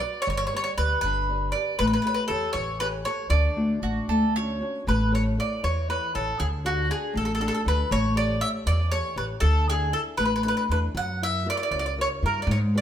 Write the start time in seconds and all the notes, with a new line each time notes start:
0.00 F#4 B4 D5
0.22 C#5
0.27 G1 G3 C#5
0.37 C#5
0.47 C#5
0.53 G4 B4 C#5 D5
0.64 C#5
0.78 D2 G4 B4 D5
1.01 G1 D3 B4
1.29 G4 B4 D5
1.52 G4 B4 D5
1.79 A1 A3 B4
1.87 B4
1.93 B4
2.02 G4 A4 B4
2.06 B4 C#5
2.14 B4
2.28 E2 G4 A4 C#5
2.53 A1 E3 C#5
2.80 G4 A4 B4 C#5
3.05 G4 A4 C#5
3.30 D2 D3 D5
3.56 A3 D4 F#4
3.82 A1 A3 D4 F#4
4.08 D2 A3 A4
4.36 C#4 D4 F#4 C#5
4.61 C#4 D4 F#4
4.87 A1 A3 B4
5.12 E4 A4 C#5
5.38 E4 A4 C#5 D5
5.63 E2 E3 C#5
5.89 E4 A4 B4 C#5
6.14 A1 E4 A4 C#5
6.38 D2 D3 G#4
6.64 D4 F#4 A4
6.89 D4 F#4 G#4 A4
7.13 A1 A3 A4
7.25 A4
7.35 A4
7.40 D4 F#4 A4
7.48 A4
7.54 A4
7.65 D2 D4 F#4 A4 B4
7.91 A1 A3 C#5
8.15 G4 A4 C#5 D5
8.40 G4 A4 C#5 E5
8.66 E2 E3 D5
8.91 G4 A4 C#5
9.16 A1 G4 A4 B4 C#5
9.40 D2 D3 A4
9.68 D4 E4 G#4 A4
9.92 D4 E4 A4
10.17 A1 A3 B4
10.25 B4
10.36 B4
10.43 D4 E4 A4 B4
10.48 B4
10.57 B4
10.69 E2 D4 E4 A4 B4
10.95 F#2 F#3 F#5
11.22 E4 F#4 A#4 E5
11.46 E4 F#4 A#4 D5
11.57 D5
11.63 D5
11.71 C#2 C#3 D5
11.79 D5
11.86 D5
11.97 E4 F#4 A#4 C#5
12.23 G2 E4 F#4 A#4
12.42 D5
12.47 G#2 G#3
12.51 C#5
12.75 F#4 G#4 B4 D5